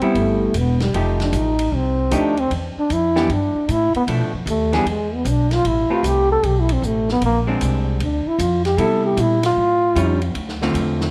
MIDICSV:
0, 0, Header, 1, 6, 480
1, 0, Start_track
1, 0, Tempo, 392670
1, 1147, Time_signature, 4, 2, 24, 8
1, 13577, End_track
2, 0, Start_track
2, 0, Title_t, "Trombone"
2, 0, Program_c, 0, 57
2, 0, Note_on_c, 0, 60, 82
2, 225, Note_on_c, 0, 57, 66
2, 243, Note_off_c, 0, 60, 0
2, 706, Note_on_c, 0, 59, 77
2, 724, Note_off_c, 0, 57, 0
2, 1000, Note_off_c, 0, 59, 0
2, 1009, Note_on_c, 0, 55, 62
2, 1150, Note_off_c, 0, 55, 0
2, 1493, Note_on_c, 0, 62, 71
2, 1666, Note_on_c, 0, 63, 82
2, 1684, Note_off_c, 0, 62, 0
2, 2144, Note_on_c, 0, 60, 77
2, 2162, Note_off_c, 0, 63, 0
2, 2622, Note_on_c, 0, 62, 90
2, 2640, Note_off_c, 0, 60, 0
2, 2928, Note_on_c, 0, 60, 87
2, 2947, Note_off_c, 0, 62, 0
2, 3080, Note_off_c, 0, 60, 0
2, 3410, Note_on_c, 0, 62, 76
2, 3582, Note_on_c, 0, 64, 86
2, 3600, Note_off_c, 0, 62, 0
2, 4065, Note_on_c, 0, 62, 77
2, 4083, Note_off_c, 0, 64, 0
2, 4542, Note_on_c, 0, 64, 93
2, 4561, Note_off_c, 0, 62, 0
2, 4837, Note_off_c, 0, 64, 0
2, 4849, Note_on_c, 0, 59, 88
2, 4939, Note_off_c, 0, 59, 0
2, 5495, Note_on_c, 0, 57, 72
2, 5772, Note_off_c, 0, 57, 0
2, 5811, Note_on_c, 0, 55, 74
2, 5989, Note_on_c, 0, 56, 66
2, 6007, Note_off_c, 0, 55, 0
2, 6292, Note_on_c, 0, 59, 75
2, 6311, Note_off_c, 0, 56, 0
2, 6469, Note_on_c, 0, 62, 74
2, 6487, Note_off_c, 0, 59, 0
2, 6769, Note_on_c, 0, 65, 100
2, 6787, Note_off_c, 0, 62, 0
2, 6933, Note_on_c, 0, 64, 84
2, 6952, Note_off_c, 0, 65, 0
2, 7247, Note_on_c, 0, 65, 80
2, 7266, Note_off_c, 0, 64, 0
2, 7415, Note_on_c, 0, 67, 90
2, 7433, Note_off_c, 0, 65, 0
2, 7712, Note_off_c, 0, 67, 0
2, 7727, Note_on_c, 0, 69, 104
2, 7895, Note_on_c, 0, 67, 84
2, 7913, Note_off_c, 0, 69, 0
2, 8066, Note_on_c, 0, 64, 79
2, 8084, Note_off_c, 0, 67, 0
2, 8224, Note_on_c, 0, 60, 72
2, 8242, Note_off_c, 0, 64, 0
2, 8376, Note_on_c, 0, 57, 70
2, 8394, Note_off_c, 0, 60, 0
2, 8672, Note_off_c, 0, 57, 0
2, 8702, Note_on_c, 0, 59, 97
2, 8834, Note_off_c, 0, 59, 0
2, 8867, Note_on_c, 0, 58, 89
2, 9041, Note_off_c, 0, 58, 0
2, 9819, Note_on_c, 0, 62, 71
2, 10119, Note_on_c, 0, 64, 81
2, 10138, Note_off_c, 0, 62, 0
2, 10277, Note_on_c, 0, 65, 75
2, 10296, Note_off_c, 0, 64, 0
2, 10576, Note_off_c, 0, 65, 0
2, 10583, Note_on_c, 0, 67, 94
2, 10758, Note_on_c, 0, 69, 102
2, 10776, Note_off_c, 0, 67, 0
2, 11063, Note_off_c, 0, 69, 0
2, 11072, Note_on_c, 0, 67, 84
2, 11251, Note_on_c, 0, 64, 77
2, 11269, Note_off_c, 0, 67, 0
2, 11550, Note_off_c, 0, 64, 0
2, 11562, Note_on_c, 0, 65, 100
2, 12626, Note_off_c, 0, 65, 0
2, 13577, End_track
3, 0, Start_track
3, 0, Title_t, "Hollow-body jazz guitar"
3, 0, Program_c, 1, 26
3, 25, Note_on_c, 1, 55, 73
3, 28, Note_on_c, 1, 59, 63
3, 40, Note_on_c, 1, 64, 66
3, 636, Note_off_c, 1, 55, 0
3, 637, Note_off_c, 1, 59, 0
3, 643, Note_off_c, 1, 64, 0
3, 1154, Note_on_c, 1, 53, 50
3, 1156, Note_on_c, 1, 57, 51
3, 1163, Note_on_c, 1, 63, 54
3, 1169, Note_on_c, 1, 67, 55
3, 1881, Note_off_c, 1, 53, 0
3, 1882, Note_off_c, 1, 57, 0
3, 1886, Note_off_c, 1, 63, 0
3, 1889, Note_off_c, 1, 67, 0
3, 2582, Note_on_c, 1, 53, 52
3, 2589, Note_on_c, 1, 57, 59
3, 2591, Note_on_c, 1, 63, 65
3, 2593, Note_on_c, 1, 67, 59
3, 2866, Note_off_c, 1, 53, 0
3, 2870, Note_off_c, 1, 57, 0
3, 2871, Note_off_c, 1, 63, 0
3, 2872, Note_off_c, 1, 67, 0
3, 3858, Note_on_c, 1, 52, 68
3, 3863, Note_on_c, 1, 62, 67
3, 3865, Note_on_c, 1, 59, 63
3, 3870, Note_on_c, 1, 67, 78
3, 4008, Note_off_c, 1, 52, 0
3, 4010, Note_off_c, 1, 62, 0
3, 4011, Note_off_c, 1, 59, 0
3, 4014, Note_off_c, 1, 67, 0
3, 4996, Note_on_c, 1, 53, 56
3, 4998, Note_on_c, 1, 57, 50
3, 5002, Note_on_c, 1, 62, 52
3, 5272, Note_off_c, 1, 53, 0
3, 5273, Note_off_c, 1, 57, 0
3, 5276, Note_off_c, 1, 62, 0
3, 5778, Note_on_c, 1, 52, 64
3, 5783, Note_on_c, 1, 59, 59
3, 5787, Note_on_c, 1, 62, 65
3, 5795, Note_on_c, 1, 68, 69
3, 5927, Note_off_c, 1, 52, 0
3, 5929, Note_off_c, 1, 59, 0
3, 5931, Note_off_c, 1, 62, 0
3, 5935, Note_off_c, 1, 68, 0
3, 7213, Note_on_c, 1, 57, 50
3, 7216, Note_on_c, 1, 60, 50
3, 7221, Note_on_c, 1, 67, 51
3, 7230, Note_on_c, 1, 71, 57
3, 7827, Note_off_c, 1, 57, 0
3, 7828, Note_off_c, 1, 60, 0
3, 7830, Note_off_c, 1, 67, 0
3, 7835, Note_off_c, 1, 71, 0
3, 9134, Note_on_c, 1, 56, 63
3, 9144, Note_on_c, 1, 60, 70
3, 9152, Note_on_c, 1, 62, 67
3, 9747, Note_off_c, 1, 56, 0
3, 9752, Note_off_c, 1, 60, 0
3, 9755, Note_off_c, 1, 62, 0
3, 10730, Note_on_c, 1, 55, 57
3, 10742, Note_on_c, 1, 59, 56
3, 10744, Note_on_c, 1, 64, 67
3, 11466, Note_off_c, 1, 55, 0
3, 11472, Note_off_c, 1, 59, 0
3, 11473, Note_off_c, 1, 64, 0
3, 12169, Note_on_c, 1, 55, 62
3, 12182, Note_on_c, 1, 61, 70
3, 12187, Note_on_c, 1, 65, 71
3, 12457, Note_off_c, 1, 55, 0
3, 12464, Note_off_c, 1, 61, 0
3, 12467, Note_off_c, 1, 65, 0
3, 12983, Note_on_c, 1, 50, 62
3, 12989, Note_on_c, 1, 57, 69
3, 12992, Note_on_c, 1, 60, 71
3, 12996, Note_on_c, 1, 65, 72
3, 13577, Note_off_c, 1, 50, 0
3, 13577, Note_off_c, 1, 57, 0
3, 13577, Note_off_c, 1, 60, 0
3, 13577, Note_off_c, 1, 65, 0
3, 13577, End_track
4, 0, Start_track
4, 0, Title_t, "Upright bass"
4, 0, Program_c, 2, 32
4, 178, Note_on_c, 2, 31, 76
4, 648, Note_off_c, 2, 31, 0
4, 660, Note_on_c, 2, 28, 85
4, 1129, Note_off_c, 2, 28, 0
4, 1139, Note_on_c, 2, 29, 68
4, 1608, Note_off_c, 2, 29, 0
4, 1621, Note_on_c, 2, 33, 89
4, 2089, Note_off_c, 2, 33, 0
4, 2102, Note_on_c, 2, 36, 76
4, 2569, Note_off_c, 2, 36, 0
4, 2584, Note_on_c, 2, 38, 83
4, 3050, Note_off_c, 2, 38, 0
4, 3060, Note_on_c, 2, 40, 77
4, 3355, Note_off_c, 2, 40, 0
4, 3542, Note_on_c, 2, 41, 82
4, 4009, Note_off_c, 2, 41, 0
4, 4024, Note_on_c, 2, 43, 68
4, 4316, Note_off_c, 2, 43, 0
4, 4503, Note_on_c, 2, 45, 84
4, 4795, Note_off_c, 2, 45, 0
4, 4976, Note_on_c, 2, 47, 81
4, 5140, Note_off_c, 2, 47, 0
4, 5140, Note_on_c, 2, 45, 51
4, 5286, Note_off_c, 2, 45, 0
4, 5293, Note_on_c, 2, 41, 65
4, 5440, Note_off_c, 2, 41, 0
4, 5447, Note_on_c, 2, 39, 86
4, 5920, Note_off_c, 2, 39, 0
4, 5927, Note_on_c, 2, 40, 74
4, 6400, Note_off_c, 2, 40, 0
4, 6413, Note_on_c, 2, 35, 88
4, 6883, Note_off_c, 2, 35, 0
4, 6899, Note_on_c, 2, 33, 81
4, 7192, Note_off_c, 2, 33, 0
4, 7370, Note_on_c, 2, 36, 86
4, 7841, Note_off_c, 2, 36, 0
4, 7857, Note_on_c, 2, 35, 73
4, 8324, Note_off_c, 2, 35, 0
4, 8337, Note_on_c, 2, 33, 79
4, 8804, Note_off_c, 2, 33, 0
4, 8816, Note_on_c, 2, 34, 76
4, 9284, Note_off_c, 2, 34, 0
4, 9299, Note_on_c, 2, 36, 90
4, 9765, Note_off_c, 2, 36, 0
4, 9775, Note_on_c, 2, 38, 82
4, 10069, Note_off_c, 2, 38, 0
4, 10250, Note_on_c, 2, 41, 96
4, 10714, Note_off_c, 2, 41, 0
4, 10722, Note_on_c, 2, 48, 75
4, 11196, Note_off_c, 2, 48, 0
4, 11207, Note_on_c, 2, 46, 92
4, 11679, Note_off_c, 2, 46, 0
4, 11689, Note_on_c, 2, 45, 68
4, 12161, Note_off_c, 2, 45, 0
4, 12168, Note_on_c, 2, 41, 90
4, 12640, Note_off_c, 2, 41, 0
4, 12645, Note_on_c, 2, 38, 80
4, 13119, Note_off_c, 2, 38, 0
4, 13127, Note_on_c, 2, 40, 96
4, 13577, Note_off_c, 2, 40, 0
4, 13577, End_track
5, 0, Start_track
5, 0, Title_t, "Muted upright bass strokes"
5, 15, Note_on_c, 9, 29, 38
5, 137, Note_off_c, 9, 29, 0
5, 3374, Note_on_c, 9, 29, 36
5, 3496, Note_off_c, 9, 29, 0
5, 4334, Note_on_c, 9, 29, 39
5, 4457, Note_off_c, 9, 29, 0
5, 4820, Note_on_c, 9, 29, 39
5, 4942, Note_off_c, 9, 29, 0
5, 7216, Note_on_c, 9, 29, 37
5, 7338, Note_off_c, 9, 29, 0
5, 10089, Note_on_c, 9, 29, 42
5, 10212, Note_off_c, 9, 29, 0
5, 13577, End_track
6, 0, Start_track
6, 0, Title_t, "Drums"
6, 18, Note_on_c, 9, 51, 40
6, 140, Note_off_c, 9, 51, 0
6, 186, Note_on_c, 9, 51, 49
6, 308, Note_off_c, 9, 51, 0
6, 661, Note_on_c, 9, 44, 45
6, 661, Note_on_c, 9, 51, 63
6, 783, Note_off_c, 9, 44, 0
6, 783, Note_off_c, 9, 51, 0
6, 981, Note_on_c, 9, 51, 41
6, 982, Note_on_c, 9, 38, 50
6, 1103, Note_off_c, 9, 51, 0
6, 1104, Note_off_c, 9, 38, 0
6, 1151, Note_on_c, 9, 51, 55
6, 1273, Note_off_c, 9, 51, 0
6, 1464, Note_on_c, 9, 51, 41
6, 1466, Note_on_c, 9, 38, 54
6, 1587, Note_off_c, 9, 51, 0
6, 1588, Note_off_c, 9, 38, 0
6, 1622, Note_on_c, 9, 44, 48
6, 1622, Note_on_c, 9, 51, 56
6, 1744, Note_off_c, 9, 44, 0
6, 1744, Note_off_c, 9, 51, 0
6, 1940, Note_on_c, 9, 51, 64
6, 2063, Note_off_c, 9, 51, 0
6, 2583, Note_on_c, 9, 44, 59
6, 2583, Note_on_c, 9, 51, 62
6, 2705, Note_off_c, 9, 44, 0
6, 2705, Note_off_c, 9, 51, 0
6, 2901, Note_on_c, 9, 51, 43
6, 3023, Note_off_c, 9, 51, 0
6, 3067, Note_on_c, 9, 51, 52
6, 3189, Note_off_c, 9, 51, 0
6, 3544, Note_on_c, 9, 44, 48
6, 3544, Note_on_c, 9, 51, 54
6, 3666, Note_off_c, 9, 44, 0
6, 3666, Note_off_c, 9, 51, 0
6, 3861, Note_on_c, 9, 38, 52
6, 3984, Note_off_c, 9, 38, 0
6, 4029, Note_on_c, 9, 51, 53
6, 4151, Note_off_c, 9, 51, 0
6, 4506, Note_on_c, 9, 44, 50
6, 4506, Note_on_c, 9, 51, 54
6, 4628, Note_off_c, 9, 44, 0
6, 4628, Note_off_c, 9, 51, 0
6, 4822, Note_on_c, 9, 51, 42
6, 4944, Note_off_c, 9, 51, 0
6, 4984, Note_on_c, 9, 51, 61
6, 5106, Note_off_c, 9, 51, 0
6, 5464, Note_on_c, 9, 44, 46
6, 5464, Note_on_c, 9, 51, 59
6, 5586, Note_off_c, 9, 44, 0
6, 5586, Note_off_c, 9, 51, 0
6, 5782, Note_on_c, 9, 51, 41
6, 5783, Note_on_c, 9, 38, 42
6, 5904, Note_off_c, 9, 51, 0
6, 5905, Note_off_c, 9, 38, 0
6, 5947, Note_on_c, 9, 51, 51
6, 6069, Note_off_c, 9, 51, 0
6, 6421, Note_on_c, 9, 44, 55
6, 6421, Note_on_c, 9, 51, 60
6, 6543, Note_off_c, 9, 44, 0
6, 6543, Note_off_c, 9, 51, 0
6, 6736, Note_on_c, 9, 51, 46
6, 6737, Note_on_c, 9, 38, 38
6, 6858, Note_off_c, 9, 51, 0
6, 6859, Note_off_c, 9, 38, 0
6, 6903, Note_on_c, 9, 51, 58
6, 7025, Note_off_c, 9, 51, 0
6, 7384, Note_on_c, 9, 44, 59
6, 7384, Note_on_c, 9, 51, 61
6, 7506, Note_off_c, 9, 44, 0
6, 7506, Note_off_c, 9, 51, 0
6, 7865, Note_on_c, 9, 51, 54
6, 7987, Note_off_c, 9, 51, 0
6, 8177, Note_on_c, 9, 51, 62
6, 8299, Note_off_c, 9, 51, 0
6, 8349, Note_on_c, 9, 44, 53
6, 8471, Note_off_c, 9, 44, 0
6, 8661, Note_on_c, 9, 38, 33
6, 8783, Note_off_c, 9, 38, 0
6, 8820, Note_on_c, 9, 51, 62
6, 8942, Note_off_c, 9, 51, 0
6, 9301, Note_on_c, 9, 44, 58
6, 9301, Note_on_c, 9, 51, 64
6, 9423, Note_off_c, 9, 44, 0
6, 9423, Note_off_c, 9, 51, 0
6, 9782, Note_on_c, 9, 51, 63
6, 9904, Note_off_c, 9, 51, 0
6, 10259, Note_on_c, 9, 44, 51
6, 10259, Note_on_c, 9, 51, 66
6, 10381, Note_off_c, 9, 44, 0
6, 10381, Note_off_c, 9, 51, 0
6, 10572, Note_on_c, 9, 51, 46
6, 10573, Note_on_c, 9, 38, 33
6, 10694, Note_off_c, 9, 51, 0
6, 10696, Note_off_c, 9, 38, 0
6, 10735, Note_on_c, 9, 51, 61
6, 10857, Note_off_c, 9, 51, 0
6, 11212, Note_on_c, 9, 44, 54
6, 11212, Note_on_c, 9, 51, 71
6, 11335, Note_off_c, 9, 44, 0
6, 11335, Note_off_c, 9, 51, 0
6, 11529, Note_on_c, 9, 51, 71
6, 11530, Note_on_c, 9, 38, 49
6, 11651, Note_off_c, 9, 51, 0
6, 11653, Note_off_c, 9, 38, 0
6, 12178, Note_on_c, 9, 44, 56
6, 12178, Note_on_c, 9, 51, 62
6, 12300, Note_off_c, 9, 44, 0
6, 12300, Note_off_c, 9, 51, 0
6, 12488, Note_on_c, 9, 51, 44
6, 12610, Note_off_c, 9, 51, 0
6, 12651, Note_on_c, 9, 51, 57
6, 12773, Note_off_c, 9, 51, 0
6, 12818, Note_on_c, 9, 38, 28
6, 12941, Note_off_c, 9, 38, 0
6, 12975, Note_on_c, 9, 38, 45
6, 13098, Note_off_c, 9, 38, 0
6, 13139, Note_on_c, 9, 44, 49
6, 13139, Note_on_c, 9, 51, 66
6, 13261, Note_off_c, 9, 44, 0
6, 13261, Note_off_c, 9, 51, 0
6, 13455, Note_on_c, 9, 38, 52
6, 13577, Note_off_c, 9, 38, 0
6, 13577, End_track
0, 0, End_of_file